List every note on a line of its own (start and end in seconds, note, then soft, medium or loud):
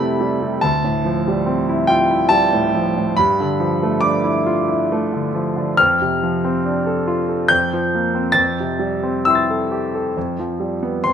0.00 0.57 F2 medium
0.00 0.42 C3 soft
0.00 0.21 G3 soft
0.00 0.64 A3 medium
0.00 0.63 C4 soft
0.00 0.64 E4 medium
0.00 0.64 G4 soft
0.00 0.61 A5 medium
0.00 0.60 B5 loud
0.21 0.54 G3 soft
0.42 0.62 C3 soft
0.61 3.13 D2 medium
0.61 1.89 A5 medium
0.84 1.18 A2 soft
1.05 1.39 F3 soft
1.28 1.61 G3 medium
1.46 1.80 C4 soft
1.69 2.03 E4 medium
1.87 2.23 F4 medium
1.87 2.31 G5 medium
2.11 2.44 E4 soft
2.29 2.65 G3 medium
2.29 3.15 A5 medium
2.53 2.87 A2 medium
2.75 3.09 F3 soft
2.97 3.18 A2 soft
3.17 5.76 G2 medium
3.17 4.02 B5 medium
3.40 3.73 D3 soft
3.60 3.94 F3 medium
3.83 4.16 A3 medium
4.01 4.37 D4 medium
4.01 4.90 D6 medium
4.24 4.59 E4 medium
4.46 4.82 F4 medium
4.68 5.04 E4 soft
4.92 5.27 A3 medium
5.13 5.48 D3 soft
5.35 5.70 F3 soft
5.56 5.78 D3 soft
5.77 7.47 F2 medium
5.77 7.50 F6 loud
6.02 6.36 C3 soft
6.23 6.57 F3 soft
6.45 6.78 C4 soft
6.65 6.99 D4 soft
6.87 7.20 A4 medium
7.07 7.42 F4 medium
7.29 7.50 A4 soft
7.48 8.33 F2 medium
7.48 8.36 G6 medium
7.73 8.07 F3 soft
7.95 8.29 A#3 soft
8.15 8.37 C4 soft
8.32 10.11 F2 medium
8.32 9.24 A6 medium
8.60 8.95 C3 soft
8.79 9.16 G3 soft
9.03 9.39 C4 soft
9.25 9.62 E4 soft
9.25 10.12 G5 soft
9.25 11.06 E6 medium
9.30 10.14 C6 soft
9.35 10.16 A6 soft
9.51 9.85 A4 soft
9.72 10.07 G4 soft
9.95 10.17 A4 soft
10.17 11.04 F2 soft
10.39 10.75 F3 soft
10.60 10.97 G3 soft
10.83 11.06 B3 soft
11.04 11.13 F2 soft
11.04 11.13 C6 medium